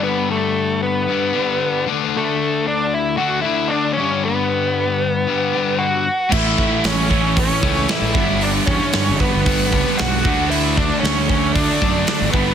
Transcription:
<<
  \new Staff \with { instrumentName = "Lead electric guitar" } { \time 4/4 \key g \lydian \tempo 4 = 115 b8 a4 b2 r8 | a4 d'8 e'8 fis'8 e'8 d'8 cis'8 | b2. fis'4 | e'4 cis'4 cis'4 e'4 |
d'8 cis'4 b4. fis'4 | e'8 d'8 cis'8 cis'8 d'4. b8 | }
  \new Staff \with { instrumentName = "Distorted electric guitar" } { \clef bass \time 4/4 \key g \lydian r1 | r1 | r1 | <a, e a cis' e'>2.~ <a, e a cis' e'>8 <g, d g b d'>8~ |
<g, d g b d'>2. <g, d g b d'>8 <d fis a d'>8~ | <d fis a d'>2. <d fis a d'>8 <g, d g b d'>8 | }
  \new Staff \with { instrumentName = "Overdriven electric guitar" } { \clef bass \time 4/4 \key g \lydian r1 | r1 | r1 | <a, e a>4. <a, e a>2 <g, d g>8~ |
<g, d g>4 <g, d g>2~ <g, d g>8 <d a d'>8~ | <d a d'>4 <d a d'>2~ <d a d'>8 <g, d g>8 | }
  \new Staff \with { instrumentName = "Overdriven electric guitar" } { \clef bass \time 4/4 \key g \lydian <g, d g>2 <g, d g>8 <g, d g>4 <d a d'>8~ | <d a d'>2 <d a d'>8 <d a d'>4 <g, d g>8~ | <g, d g>2 <g, d g>8 <g, d g>4 r8 | <a, e a>2~ <a, e a>8 <a, e a>8 <a, e a>8 <g, d g>8~ |
<g, d g>2 <g, d g>8 <g, d g>4 <d a d'>8~ | <d a d'>2 <d a d'>8 <d a d'>4 <g, d g>8 | }
  \new Staff \with { instrumentName = "Fingered electric bass" } { \clef bass \time 4/4 \key g \lydian r1 | r1 | r1 | a,,8 r8 a,,4. cis,8 r16 a,,16 g,,8~ |
g,,8 e,16 r16 g,16 g,,16 r16 g,,8. cis,16 r16 b,,8 d,8~ | d,4 d,4. fis,8 r16 gis,,16 g,,8 | }
  \new DrumStaff \with { instrumentName = "Drums" } \drummode { \time 4/4 r4 r4 r4 r4 | r4 r4 r4 r4 | r4 r4 r4 r4 | <cymc bd>8 bd8 <hho sn>8 bd8 <hho bd>8 bd8 <hho sn>8 bd8 |
hho8 bd8 <hho sn>8 bd8 <hho bd>8 bd8 <hho sn>8 bd8 | hho8 bd8 <hho sn>8 bd8 <hho bd>8 bd8 <hho sn>8 bd8 | }
>>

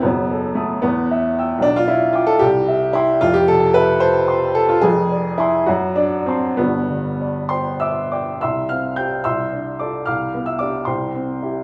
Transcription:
\new Staff \with { instrumentName = "Upright piano" } { \time 6/8 \key e \minor \tempo 4. = 74 << { b4 a8 b4. | \key c \major d'16 f'16 e'8 f'16 a'16 g'4 e'8 | f'16 g'16 a'8 b'8 c''4 a'16 f'16 | aes'4 e'8 fis'8 d'8 c'8 |
b4. <c'' g'' c'''>8 <e'' e'''>8 <d'' d'''>8 | <e'' c''' e'''>8 <f'' f'''>8 <g'' g'''>8 <e'' c''' e'''>4 <d'' d'''>8 | <f'' d''' f'''>8. <e'' e'''>16 <d'' d'''>8 <c'' g'' c'''>8 r4 | } \\ { <fis,, fis,>8 a'8 <a'' dis'''>8 e,8 e''8 <g'' e'''>8 | b,,8 f''8 <g'' d'''>8 c,8 e''8 <g'' c'''>8 | <f,, f,>8 c8 e''8 a''8 c'''8 a''8 | <f,, f,>8 d''8 <aes'' c'''>8 fis,8 d''8 <a'' c'''>8 |
<g,, g,>8 d8 d''4 d'''8 g''8 | c,8 c'8 <g' c''>8 c,8 d'8 <f' a'>8 | c,8 b8 <d' g'>8 c,8 c'8 <e' g'>8 | } >> }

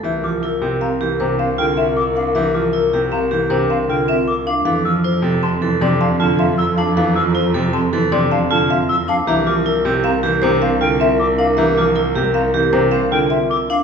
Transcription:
<<
  \new Staff \with { instrumentName = "Flute" } { \time 6/4 \key c \mixolydian \tempo 4 = 156 r8 d'''8 r4 bes''8 r8 bes''8 f''8 g''8 e''8 d'''8 f''8 | r8 d'''8 r4 bes''8 r8 bes''8 f''8 g''8 e''8 d'''8 f''8 | r8 e'''8 r4 c'''8 r8 c'''8 f''8 a''8 e''8 e'''8 f''8 | r8 e'''8 r4 c'''8 r8 c'''8 f''8 a''8 e''8 e'''8 f''8 |
bes''8 d'''8 r4 bes''8 r8 bes''8 f''8 g''8 e''8 d'''8 f''8 | bes''8 d'''8 r4 bes''8 r8 bes''8 f''8 g''8 e''8 d'''8 f''8 | }
  \new Staff \with { instrumentName = "Marimba" } { \time 6/4 \key c \mixolydian e''8 r8 bes'8 r8 f''8 r8 c''8 f''8 r8 e''8 r8 f''8 | e''8 r8 bes'8 r8 f''8 r8 c''8 f''8 r8 e''8 r8 f''8 | f''8 r8 c''8 r8 a''8 r8 d''8 a''8 r8 f''8 r8 a''8 | f''8 r8 c''8 r8 a''8 r8 d''8 a''8 r8 f''8 r8 a''8 |
e''8 r8 bes'8 r8 f''8 r8 c''8 f''8 r8 e''8 r8 f''8 | e''8 r8 bes'8 r8 f''8 r8 c''8 f''8 r8 e''8 r8 f''8 | }
  \new Staff \with { instrumentName = "French horn" } { \time 6/4 \key c \mixolydian bes'1.~ | bes'1~ bes'4. r8 | a'1.~ | a'1~ a'4. r8 |
bes'1.~ | bes'1~ bes'4. r8 | }
  \new Staff \with { instrumentName = "Vibraphone" } { \time 6/4 \key c \mixolydian g'8 f'8 e'8 g'8 c'8 g'8 d'8 c'8 f'8 c'8 e'8 d'8 | g'8 f'8 e'8 g'8 c'8 g'8 d'8 c'8 f'8 c'8 e'8 d'8 | a'8 f'8 e'8 a'8 c'8 a'8 d'8 c'8 f'8 c'8 e'8 d'8 | a'8 f'8 e'8 a'8 c'8 a'8 d'8 c'8 f'8 c'8 e'8 d'8 |
g'8 f'8 e'8 g'8 c'8 g'8 d'8 c'8 f'8 c'8 e'8 d'8 | g'8 f'8 e'8 g'8 c'8 g'8 d'8 c'8 f'8 c'8 e'8 d'8 | }
  \new Staff \with { instrumentName = "Grand piano" } { \clef bass \time 6/4 \key c \mixolydian e8 f8 r8 c8 r8 e8 c8 r8 d8 r4. | e8 f8 r8 c8 r8 e8 c8 r8 d8 r4. | e8 f8 r8 c8 r8 e8 c8 r8 d8 r4. | e8 f8 r8 c8 r8 e8 c8 r8 d8 r4. |
e8 f8 r8 c8 r8 e8 c8 r8 d8 r4. | e8 f8 r8 c8 r8 e8 c8 r8 d8 r4. | }
  \new Staff \with { instrumentName = "Cello" } { \clef bass \time 6/4 \key c \mixolydian c,1.~ | c,1. | f,1.~ | f,1. |
c,1.~ | c,1. | }
>>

